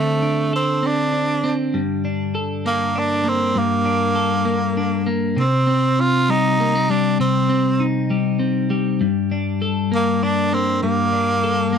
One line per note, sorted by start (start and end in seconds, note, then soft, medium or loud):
0.00 3.42 D3 medium
0.00 0.51 A3 medium
0.00 0.82 C4 soft
0.00 0.22 D4 soft
0.00 0.53 A4 medium
0.22 1.12 D4 soft
0.53 0.87 C4 medium
0.53 2.34 A4 medium
0.83 1.43 C4 medium
0.83 1.53 D4 medium
1.13 2.04 D4 soft
1.44 1.80 C4 medium
1.74 3.54 G2 medium
2.05 2.94 D4 soft
2.35 4.14 A4 medium
2.66 3.23 A#3 soft
2.66 3.00 A#3 medium
2.95 3.84 D4 medium
2.95 3.30 D4 medium
3.24 4.44 A#3 medium
3.28 3.60 C4 medium
3.55 5.37 G2 medium
3.55 5.08 A#3 medium
3.85 4.76 D4 soft
4.15 5.43 A4 soft
4.45 5.05 A#3 medium
4.77 5.43 D4 soft
5.07 5.43 A#3 soft
5.37 7.18 C3 medium
5.37 6.02 C4 medium
5.67 6.58 C4 soft
6.00 6.32 F4 medium
6.29 6.89 G3 soft
6.29 6.92 D#4 medium
6.60 6.75 A#3 soft
6.75 7.48 C4 soft
6.89 8.10 G3 medium
6.89 7.19 D4 medium
7.20 9.00 C3 medium
7.20 7.83 C4 medium
7.49 8.38 C4 soft
7.80 9.06 D#4 medium
8.10 8.70 G3 medium
8.39 9.06 C4 soft
8.70 9.65 G3 medium
9.01 10.82 G2 medium
9.32 10.22 D4 soft
9.62 11.42 A4 medium
9.92 10.51 A#3 soft
9.92 10.25 A#3 medium
10.23 11.12 D4 soft
10.23 10.55 D4 medium
10.52 11.72 A#3 soft
10.52 10.82 C4 medium
10.82 11.78 G2 medium
10.82 11.78 A#3 medium
11.13 11.78 D4 soft
11.44 11.78 A4 medium
11.73 11.78 A#3 soft